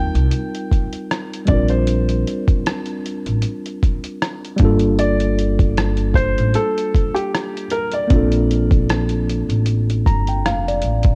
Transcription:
Already playing: upright bass D#2, tine electric piano G3 C4 D#4 F4 A#4, felt piano G5
0.15 upright bass C2, closed hi-hat
0.31 closed hi-hat
0.55 closed hi-hat
0.72 kick, closed hi-hat
0.93 closed hi-hat
1.11 cross-stick, closed hi-hat
1.33 closed hi-hat
1.45 upright bass A#1, tine electric piano G3 C4, felt piano D5, kick, closed hi-hat
1.50 tine electric piano D4 F4
1.54 tine electric piano A#4
1.68 felt piano C5, closed hi-hat
1.87 closed hi-hat
2.09 closed hi-hat
2.27 closed hi-hat
2.48 kick, closed hi-hat
2.66 cross-stick, closed hi-hat
2.86 closed hi-hat
3.06 closed hi-hat
3.26 upright bass A1, closed hi-hat
3.42 closed hi-hat
3.66 closed hi-hat
3.83 kick, closed hi-hat
4.04 closed hi-hat
4.22 cross-stick, closed hi-hat
4.45 closed hi-hat
4.56 upright bass G1, tine electric piano G3 A#3, kick, closed hi-hat
4.61 tine electric piano D4 F4
4.65 tine electric piano A4
4.79 closed hi-hat
4.99 felt piano D5, closed hi-hat
5.20 closed hi-hat
5.39 closed hi-hat
5.59 kick, closed hi-hat
5.77 cross-stick, closed hi-hat
5.97 closed hi-hat
6.14 felt piano C5, kick, closed hi-hat
6.38 upright bass A1, closed hi-hat
6.54 felt piano A4, closed hi-hat
6.78 closed hi-hat
6.95 kick, closed hi-hat
7.15 felt piano G4, closed hi-hat
7.35 cross-stick, closed hi-hat
7.57 closed hi-hat
7.70 felt piano A#4, closed hi-hat
7.92 felt piano D5, closed hi-hat
8.08 upright bass A#1, tine electric piano A#3 C4, kick, closed hi-hat
8.12 tine electric piano D4 F4 A4
8.32 closed hi-hat
8.51 closed hi-hat
8.71 kick, closed hi-hat
8.89 cross-stick, closed hi-hat
9.09 closed hi-hat
9.29 closed hi-hat
9.49 upright bass A1, closed hi-hat
9.66 closed hi-hat
9.90 closed hi-hat
10.06 upright bass G1, tine electric piano A#5, kick, closed hi-hat
10.27 tine electric piano G5, closed hi-hat
10.45 upright bass F1, tine electric piano F5, cross-stick, closed hi-hat
10.68 tine electric piano D5, closed hi-hat
10.82 upright bass A1, closed hi-hat
11.03 kick, closed hi-hat

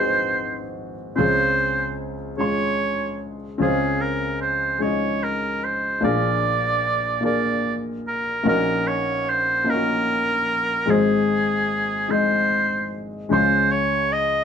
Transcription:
Already playing: grand piano G#1 G#2 C4 D#4 F#4 G#4 B4 C5, oboe C5
0.04 grand piano C5
1.16 grand piano C#2 C#3 C4 C#4 F4 G#4, oboe C5
1.20 grand piano C5
2.37 grand piano G#3 C#4 F4 G#4 C6, oboe C#5
3.58 grand piano C#2 C#3 C4 C#4 F4 G#4 C5, oboe G#4
4.01 oboe A#4
4.42 oboe C5
4.78 grand piano G#3 C#4 D#4 G#4
4.82 oboe C#5, grand piano D#5
4.87 grand piano F4
5.24 oboe A#4
5.64 oboe C5
6.01 grand piano A#1 A#2 A#3 D4 F4 G#4 A#4, oboe D5
7.21 grand piano A#3 D4 F4 G#4 A#4
7.26 oboe D5
8.08 oboe A#4
8.43 grand piano A#1 A#2 A#3 C#4 D#4 F#4 A#4
8.49 oboe A#4
8.88 oboe C#5
9.29 oboe C5
9.64 grand piano A#3 C#4 D#4 F4 A#4
9.70 grand piano F#4, oboe A#4
10.86 grand piano G#1 G#2 G#3 C4 D#4 G#4
10.90 oboe G#4, grand piano C5
12.08 grand piano G#3 C4 D#4 G#4, oboe C5
12.13 grand piano D#5
13.29 grand piano C#2 C#3 G#3 C#4 F4 G#4 C6, oboe C5
13.72 oboe C#5
14.13 oboe D#5

